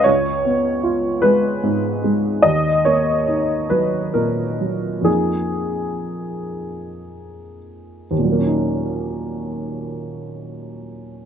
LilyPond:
<<
  \new Staff \with { instrumentName = "Upright piano" } { \time 6/8 \key ees \minor \tempo 4. = 43 des''4. ces''4. | ees''8 des''4 ces''8 bes'4 | aes'2~ aes'8 r8 | <ees, bes, ges bes des' ees'>2. | }
  \new Staff \with { instrumentName = "Upright piano" } { \clef bass \time 6/8 \key ees \minor des,8 ces'8 f'8 aes8 aes,8 aes8 | ees,8 bes8 ees'8 ges8 bes,8 ges8 | <f, f bes ees'>2. | r2. | }
>>